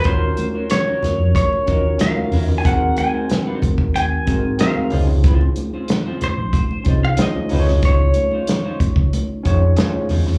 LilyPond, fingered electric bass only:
\new Staff \with { instrumentName = "Fingered electric bass" } { \clef bass \time 4/4 \key des \major \tempo 4 = 93 ees,8 r4 r16 f,16 r8 ees,8 r8 fes,8 | ees,8 r4 r16 ees,8. aes,8 r8 des,8~ | des,8 r4 r16 bes,,16 r8 c,8 r8 des,8 | des,8 r4 r16 des,16 r8 f,8 r8 fes,8 | }